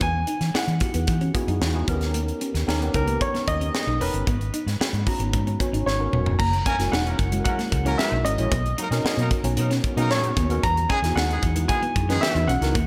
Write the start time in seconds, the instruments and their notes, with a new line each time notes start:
0.01 fingered electric bass E2, clean electric guitar B3, grand piano G#5, kick, closed hi-hat
0.27 clean electric guitar D#4, closed hi-hat
0.41 fingered electric bass E3, muted clean electric guitar stroke, snare, closed hi-hat
0.54 clean electric guitar E4, grand piano F#5, muted fingered electric bass stroke, snare
0.68 fingered electric bass E3, closed hi-hat
0.80 tine electric piano B3 D#4 E4 F#4 G4, muted clean electric guitar stroke, kick, closed hi-hat
0.89 tine electric piano G#4
0.94 fingered electric bass E2, clean electric guitar B3, closed hi-hat
1.07 fingered electric bass E3, kick, closed hi-hat
1.21 clean electric guitar C#4, closed hi-hat
1.34 tine electric piano B3 D#4 E4 F#4 G#4, muted clean electric guitar stroke, kick, closed hi-hat
1.48 fingered electric bass F#2, clean electric guitar D#4, closed hi-hat
1.61 fingered electric bass E2, snare
1.74 tine electric piano B3 D#4 E4 F#4 G#4
1.87 fingered electric bass D#2, tine electric piano B3 C#4 D#4 E4 A#4, clean electric guitar B3, kick, closed hi-hat
1.94 tine electric piano G4
2.01 snare, closed hi-hat
2.14 clean electric guitar A#3, closed hi-hat
2.28 closed hi-hat
2.41 clean electric guitar C#4, closed hi-hat
2.54 fingered electric bass D#2, muted clean electric guitar stroke, snare, closed hi-hat
2.67 fingered electric bass D#2, tine electric piano B3 C#4 D#4 G4 A#4, clean electric guitar D#4, snare
2.80 tine electric piano B3 C#4 D#4 G4 B4, closed hi-hat
2.94 fingered electric bass C#2, grand piano A#4, muted clean electric guitar stroke, kick, closed hi-hat
3.07 clean electric guitar A#3, tine electric piano B3 C#4 D#4 G4 A#4, closed hi-hat
3.21 grand piano C#5, kick, closed hi-hat
3.34 clean electric guitar B3, snare, closed hi-hat
3.48 fingered electric bass D#2, grand piano D#5, muted clean electric guitar stroke, kick, closed hi-hat
3.61 clean electric guitar C#4, closed hi-hat
3.74 muted clean electric guitar stroke, snare
3.87 fingered electric bass B1, clean electric guitar D#4
4.00 fingered electric bass E1, tine electric piano B3 C#4 D#4 G4 A#4, clean electric guitar C#4, grand piano B4, open hi-hat
4.14 fingered electric bass G1, closed hi-hat
4.27 fingered electric bass G#1, clean electric guitar B3, kick, closed hi-hat
4.41 closed hi-hat
4.54 clean electric guitar D#4, closed hi-hat
4.66 fingered electric bass G#2, muted clean electric guitar stroke, snare, closed hi-hat
4.80 clean electric guitar F#4, muted fingered electric bass stroke, snare
4.93 fingered electric bass G#2, closed hi-hat
5.06 tine electric piano B3 C#4 D#4 F#4 A#5, muted clean electric guitar stroke, kick, open hi-hat
5.20 fingered electric bass G#1, clean electric guitar B3, closed hi-hat
5.33 fingered electric bass G#2, kick, closed hi-hat
5.47 clean electric guitar C#4, closed hi-hat
5.59 tine electric piano B3 C#4 D#4 F#4 C#5, muted clean electric guitar stroke, kick, closed hi-hat
5.73 fingered electric bass G#1, clean electric guitar D#4, closed hi-hat
5.86 fingered electric bass G#1, grand piano C#5, snare
5.99 tine electric piano B3 C#4 D#4 F#4 A#4
6.13 fingered electric bass E1, clean electric guitar B3, mid tom
6.26 floor tom
6.39 fingered electric bass F#1, clean electric guitar A#3, grand piano A#5, kick, crash
6.53 closed hi-hat
6.66 horn section E3 A#3 C#4 A#4, clean electric guitar C#4, grand piano G#5, kick, closed hi-hat
6.79 fingered electric bass F#1, tine electric piano G#3 C#4 E4 F#4 A#4, muted clean electric guitar stroke, snare, closed hi-hat
6.92 fingered electric bass E1, clean electric guitar D#4, grand piano F#5, snare
7.06 horn section E3 A#3 C#4 A#4, closed hi-hat
7.19 fingered electric bass F#1, muted clean electric guitar stroke, kick, closed hi-hat
7.32 tine electric piano G#3 C#4 E4 F#4 G#4, clean electric guitar G#3, closed hi-hat
7.40 tine electric piano A#4
7.44 horn section E3 A#3 C#4 A#4, grand piano F#5, kick, closed hi-hat
7.59 clean electric guitar A#3, snare, closed hi-hat
7.72 fingered electric bass C#2, muted clean electric guitar stroke, kick, closed hi-hat
7.85 horn section E3 A#3 C#4 A#4, tine electric piano G#3 C#4 E4 F#4 G#4, clean electric guitar C#4, closed hi-hat
7.93 tine electric piano A#4
7.98 grand piano E5, muted clean electric guitar stroke, snare
8.12 fingered electric bass B1, clean electric guitar D#4
8.25 fingered electric bass G#1, clean electric guitar C#4, grand piano D#5, closed hi-hat
8.38 fingered electric bass A#1, tine electric piano G#3 C#4 E4 F#4 C#5, closed hi-hat
8.51 fingered electric bass B1, clean electric guitar B3, kick, closed hi-hat
8.66 closed hi-hat
8.78 horn section F#3 A#3 D#4 A#4, clean electric guitar D#4, closed hi-hat
8.91 fingered electric bass B2, tine electric piano B3 C#4 D#4 F#4 A#4, muted clean electric guitar stroke, snare, closed hi-hat
9.04 clean electric guitar F#4, muted fingered electric bass stroke, snare
9.17 fingered electric bass B2, horn section F#3 A#3 D#4 A#4, closed hi-hat
9.31 muted clean electric guitar stroke, kick, closed hi-hat
9.44 fingered electric bass B1, tine electric piano B3 C#4 D#4 F#4 C#5, clean electric guitar B3, closed hi-hat
9.57 fingered electric bass B2, horn section F#3 A#3 D#4 A#4, closed hi-hat
9.70 clean electric guitar C#4, snare, closed hi-hat
9.84 muted clean electric guitar stroke, kick, closed hi-hat
9.97 fingered electric bass B2, horn section F#3 A#3 D#4 A#4, tine electric piano B3 C#4 D#4 F#4 G#4, clean electric guitar D#4, closed hi-hat
10.10 fingered electric bass A#2, grand piano C#5, snare
10.24 closed hi-hat
10.37 fingered electric bass D#2, clean electric guitar B3, kick, closed hi-hat
10.49 tine electric piano B3 C#4 D#4 F#4 A#4, closed hi-hat
10.63 fingered electric bass E2, clean electric guitar B3, grand piano A#5, kick, closed hi-hat
10.77 closed hi-hat
10.89 horn section D#3 G#3 B3 G#4, clean electric guitar C#4, grand piano G#5, kick, closed hi-hat
11.02 fingered electric bass E2, tine electric piano B3 D#4 E4 F#4 G#4, muted clean electric guitar stroke, snare, closed hi-hat
11.16 fingered electric bass D#2, clean electric guitar D#4, grand piano F#5, snare
11.30 horn section D#3 G#3 B3 G#4, closed hi-hat
11.43 fingered electric bass E2, muted clean electric guitar stroke, kick, closed hi-hat
11.55 clean electric guitar G#3, tine electric piano B3 D#4 E4 F#4 G#4, closed hi-hat
11.68 horn section D#3 G#3 B3 G#4, grand piano G#5, kick, closed hi-hat
11.82 clean electric guitar B3, closed hi-hat
11.96 fingered electric bass F#2, muted clean electric guitar stroke, kick, closed hi-hat
12.09 horn section D#3 G#3 B3 G#4, tine electric piano E3 B3 D#4 F#4 B4, clean electric guitar C#4, snare, closed hi-hat
12.21 grand piano E5, snare
12.35 fingered electric bass E2, clean electric guitar D#4, closed hi-hat
12.47 fingered electric bass B1, clean electric guitar C#4, grand piano F#5, closed hi-hat
12.61 fingered electric bass C#2, tine electric piano B3 D#4 E4 F#4 A#4, snare, closed hi-hat
12.75 fingered electric bass D#2, clean electric guitar A#3, kick, closed hi-hat